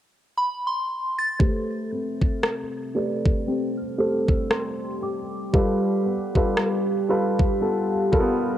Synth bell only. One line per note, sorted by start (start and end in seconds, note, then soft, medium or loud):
0.38 0.65 B5 medium
0.67 1.20 C6 medium
1.18 1.72 A6 medium
1.71 2.24 G6 medium
2.22 2.44 F6 medium
2.96 3.80 A6 medium
3.77 4.30 F6 medium
4.29 4.51 E6 medium
4.51 4.99 C6 medium
5.03 7.05 D6 medium